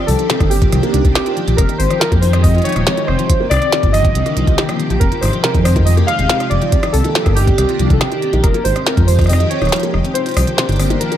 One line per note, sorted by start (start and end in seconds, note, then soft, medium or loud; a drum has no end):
0.00 1.57 D#3 medium
0.00 1.57 A#3 medium
0.00 1.55 C4 medium
0.00 1.57 D4 medium
0.00 3.26 G4 medium
0.07 0.15 C2 medium
0.07 0.14 F3 medium
0.07 0.52 A4 loud
0.07 open hi-hat medium
0.19 0.29 F3 medium
0.19 closed hi-hat soft
0.30 0.35 C3 medium
0.30 snare loud
0.30 closed hi-hat loud
0.40 0.67 G1 loud
0.40 0.51 D#3 medium
0.40 kick loud
0.40 cross-stick medium
0.40 closed hi-hat soft
0.50 0.61 C4 medium
0.50 1.13 G4 medium
0.50 open hi-hat medium
0.62 0.71 F3 medium
0.62 kick loud
0.62 closed hi-hat soft
0.72 0.80 C2 medium
0.72 0.81 F3 medium
0.72 cross-stick medium
0.72 closed hi-hat medium
0.83 0.92 A#3 loud
0.83 closed hi-hat soft
0.94 1.01 C2 medium
0.94 1.03 D#3 medium
0.94 closed hi-hat medium
1.05 1.12 C2 medium
1.05 1.14 C4 medium
1.05 kick medium
1.05 closed hi-hat soft
1.14 1.26 C4 medium
1.14 1.59 G4 medium
1.14 cross-stick medium
1.14 snare loud
1.14 closed hi-hat medium
1.26 1.35 F4 medium
1.26 closed hi-hat soft
1.37 1.42 F3 medium
1.37 closed hi-hat soft
1.48 1.55 A#1 medium
1.48 1.58 F3 medium
1.48 closed hi-hat soft
1.57 1.65 F1 loud
1.57 11.17 C3 medium
1.57 1.64 C3 medium
1.57 3.28 F3 medium
1.57 3.28 G#3 medium
1.57 3.28 D#4 medium
1.57 1.80 A#4 loud
1.57 kick loud
1.57 cross-stick medium
1.57 closed hi-hat medium
1.69 1.79 D#3 medium
1.69 closed hi-hat soft
1.78 1.87 G#1 medium
1.78 1.90 C4 medium
1.78 2.01 C5 loud
1.78 open hi-hat medium
1.90 1.99 F3 medium
1.90 cross-stick soft
1.90 closed hi-hat soft
2.00 2.10 F3 medium
2.00 2.22 A#4 loud
2.00 snare loud
2.00 closed hi-hat medium
2.12 2.60 F2 medium
2.12 2.21 A#3 loud
2.12 kick loud
2.12 closed hi-hat soft
2.21 2.31 D#3 medium
2.21 2.44 C5 loud
2.21 open hi-hat medium
2.33 2.42 C4 medium
2.33 cross-stick medium
2.33 closed hi-hat soft
2.43 2.54 C4 medium
2.43 2.65 D#5 loud
2.43 kick loud
2.43 open hi-hat medium
2.55 2.64 F4 medium
2.55 closed hi-hat soft
2.58 closed hi-hat soft
2.62 3.09 C#5 loud
2.62 closed hi-hat soft
2.65 2.71 F3 medium
2.65 closed hi-hat medium
2.69 closed hi-hat soft
2.72 cross-stick soft
2.72 closed hi-hat soft
2.76 2.83 D#1 loud
2.76 2.86 F3 medium
2.76 closed hi-hat soft
2.87 2.92 C3 medium
2.87 snare loud
2.87 closed hi-hat medium
2.97 3.08 D#3 medium
2.97 closed hi-hat soft
3.07 3.15 F1 medium
3.07 3.18 C4 medium
3.07 3.47 C5 loud
3.07 cross-stick soft
3.19 3.28 F3 medium
3.19 closed hi-hat soft
3.30 4.99 D3 medium
3.30 4.99 D#3 medium
3.30 3.39 F3 medium
3.30 4.99 A#3 medium
3.30 8.40 G4 medium
3.30 kick loud
3.30 closed hi-hat medium
3.40 3.49 A#3 loud
3.50 3.58 C2 medium
3.50 3.60 D#3 medium
3.50 3.95 D5 loud
3.50 cross-stick medium
3.50 closed hi-hat soft
3.50 open hi-hat medium
3.54 cross-stick medium
3.57 cross-stick soft
3.59 cross-stick soft
3.62 3.71 C4 medium
3.62 cross-stick soft
3.62 closed hi-hat soft
3.64 cross-stick soft
3.67 cross-stick soft
3.70 3.83 C4 medium
3.70 cross-stick soft
3.70 snare loud
3.70 closed hi-hat loud
3.83 4.10 G1 medium
3.83 3.92 F4 medium
3.83 kick loud
3.83 closed hi-hat soft
3.93 3.99 F3 medium
3.93 4.59 D#5 loud
3.93 cross-stick soft
3.93 open hi-hat medium
4.05 4.15 F3 medium
4.05 kick loud
4.05 closed hi-hat soft
4.15 4.23 C2 medium
4.15 4.21 C3 medium
4.15 closed hi-hat medium
4.26 4.36 D#3 medium
4.26 cross-stick soft
4.26 closed hi-hat soft
4.37 4.44 C2 medium
4.37 4.46 F3 medium
4.37 closed hi-hat medium
4.47 4.55 C2 medium
4.47 4.58 F4 medium
4.47 kick medium
4.47 closed hi-hat soft
4.57 4.64 D#3 medium
4.57 4.97 G4 medium
4.57 snare loud
4.57 closed hi-hat medium
4.69 4.78 F3 medium
4.69 cross-stick medium
4.69 closed hi-hat soft
4.80 4.89 F3 medium
4.80 closed hi-hat soft
4.90 4.98 A#1 medium
4.90 4.99 F3 medium
4.90 closed hi-hat soft
5.00 5.08 F1 loud
5.00 6.71 F3 medium
5.00 6.71 G#3 medium
5.00 5.11 C4 medium
5.00 6.71 D#4 medium
5.00 5.22 A#4 loud
5.00 kick loud
5.00 closed hi-hat medium
5.12 5.21 F4 medium
5.12 closed hi-hat soft
5.21 5.30 G#1 medium
5.21 5.28 F3 medium
5.21 5.44 C5 loud
5.21 cross-stick soft
5.21 open hi-hat medium
5.25 cross-stick soft
5.28 cross-stick soft
5.31 5.43 F3 medium
5.31 cross-stick soft
5.33 cross-stick soft
5.33 closed hi-hat soft
5.36 cross-stick soft
5.39 cross-stick soft
5.41 5.49 C3 medium
5.41 5.65 A#4 medium
5.41 cross-stick soft
5.41 snare loud
5.41 closed hi-hat medium
5.55 6.03 F2 medium
5.55 5.65 D#3 medium
5.55 kick loud
5.55 closed hi-hat soft
5.64 5.75 C4 medium
5.64 5.87 C5 medium
5.64 cross-stick medium
5.64 open hi-hat medium
5.76 5.81 D#3 loud
5.76 kick loud
5.76 closed hi-hat soft
5.85 5.96 F3 medium
5.85 5.95 D#5 loud
5.85 open hi-hat medium
5.97 6.06 A#3 loud
5.97 closed hi-hat soft
6.07 6.17 D#3 medium
6.07 6.52 F5 loud
6.07 cross-stick medium
6.07 closed hi-hat medium
6.19 6.26 D#1 loud
6.19 6.28 C4 medium
6.19 closed hi-hat soft
6.29 6.40 C4 medium
6.29 snare loud
6.29 closed hi-hat medium
6.40 6.49 F4 medium
6.40 cross-stick soft
6.40 closed hi-hat soft
6.50 6.58 F1 medium
6.50 6.56 F3 medium
6.50 6.95 D5 loud
6.50 closed hi-hat soft
6.62 6.72 F3 medium
6.62 closed hi-hat soft
6.72 6.78 C3 medium
6.72 8.42 D#3 medium
6.72 8.42 A#3 medium
6.72 8.42 D4 medium
6.72 kick loud
6.72 closed hi-hat medium
6.83 6.93 D#3 medium
6.83 cross-stick medium
6.83 closed hi-hat soft
6.93 7.01 C2 medium
6.93 7.04 C4 medium
6.93 7.37 A4 loud
6.93 open hi-hat medium
7.04 7.10 D#3 loud
7.04 closed hi-hat soft
7.15 7.24 F3 medium
7.15 snare loud
7.15 closed hi-hat medium
7.26 7.53 G1 medium
7.26 7.35 A#3 loud
7.26 kick loud
7.26 cross-stick medium
7.26 closed hi-hat soft
7.35 7.46 D#3 medium
7.35 7.95 G4 medium
7.35 open hi-hat medium
7.47 7.56 C4 medium
7.47 kick loud
7.47 closed hi-hat soft
7.58 7.65 C2 medium
7.58 7.68 C4 medium
7.58 cross-stick medium
7.58 closed hi-hat medium
7.69 7.78 F4 medium
7.69 closed hi-hat soft
7.79 7.87 C2 medium
7.79 7.85 F3 medium
7.79 closed hi-hat medium
7.90 7.98 C2 medium
7.90 8.01 F3 medium
7.90 8.00 A4 medium
7.90 kick medium
7.90 closed hi-hat soft
8.00 8.06 C3 medium
8.00 8.45 G4 medium
8.00 cross-stick medium
8.00 snare loud
8.00 closed hi-hat medium
8.12 8.22 D#3 medium
8.12 closed hi-hat soft
8.22 8.33 C4 medium
8.22 closed hi-hat soft
8.33 8.40 A#1 medium
8.33 8.39 D#3 loud
8.33 closed hi-hat soft
8.43 8.51 F1 loud
8.43 10.14 F3 medium
8.43 8.53 F3 medium
8.43 10.14 G#3 medium
8.43 10.14 D#4 medium
8.43 10.14 G4 medium
8.43 8.65 A#4 loud
8.43 kick loud
8.43 cross-stick medium
8.43 closed hi-hat medium
8.54 8.64 A#3 loud
8.54 closed hi-hat soft
8.64 8.73 G#1 medium
8.64 8.74 D#3 medium
8.64 8.87 C5 loud
8.64 open hi-hat medium
8.76 8.85 C4 medium
8.76 cross-stick medium
8.76 closed hi-hat soft
8.86 8.97 C4 medium
8.86 9.08 A#4 medium
8.86 snare loud
8.86 closed hi-hat medium
8.97 9.45 F2 medium
8.97 9.07 F4 medium
8.97 kick loud
8.97 closed hi-hat soft
9.07 9.14 F3 medium
9.07 9.30 C5 medium
9.07 open hi-hat medium
9.19 9.29 F3 medium
9.19 kick loud
9.19 cross-stick soft
9.19 closed hi-hat soft
9.21 closed hi-hat soft
9.24 cross-stick medium
9.24 closed hi-hat soft
9.27 9.35 C3 medium
9.27 9.49 D#5 medium
9.27 closed hi-hat soft
9.27 open hi-hat medium
9.33 cross-stick medium
9.40 9.51 D#3 medium
9.40 closed hi-hat soft
9.50 9.61 C4 medium
9.50 9.90 C#5 medium
9.50 closed hi-hat medium
9.62 9.69 D#1 loud
9.62 9.67 D#3 loud
9.62 cross-stick soft
9.62 closed hi-hat soft
9.65 cross-stick soft
9.65 closed hi-hat soft
9.69 cross-stick soft
9.69 snare loud
9.69 closed hi-hat soft
9.72 9.81 F3 medium
9.72 closed hi-hat medium
9.76 cross-stick soft
9.76 closed hi-hat soft
9.80 9.92 A#3 loud
9.80 closed hi-hat soft
9.83 closed hi-hat soft
9.94 10.01 F1 medium
9.94 10.03 D#3 medium
9.94 cross-stick medium
10.04 10.14 C4 medium
10.04 closed hi-hat soft
10.14 11.17 D#3 medium
10.14 11.17 A#3 medium
10.14 10.25 C4 medium
10.14 11.17 D4 medium
10.14 11.17 G4 medium
10.14 10.56 C5 loud
10.14 closed hi-hat medium
10.26 10.35 F4 medium
10.26 closed hi-hat soft
10.29 closed hi-hat soft
10.31 closed hi-hat soft
10.34 10.44 C2 medium
10.34 10.42 F3 medium
10.34 cross-stick medium
10.34 closed hi-hat soft
10.34 open hi-hat medium
10.47 10.58 F3 medium
10.47 closed hi-hat soft
10.57 10.63 C3 medium
10.57 11.02 C5 medium
10.57 snare loud
10.57 closed hi-hat loud
10.69 10.95 G1 loud
10.69 10.79 D#3 medium
10.69 closed hi-hat soft
10.72 closed hi-hat soft
10.76 10.90 C4 medium
10.76 cross-stick medium
10.76 closed hi-hat soft
10.76 open hi-hat medium
10.90 10.96 D#3 loud
10.90 closed hi-hat soft
11.00 11.10 F3 medium
11.00 11.17 A#4 medium
11.00 closed hi-hat medium
11.12 11.17 A#3 loud
11.12 closed hi-hat soft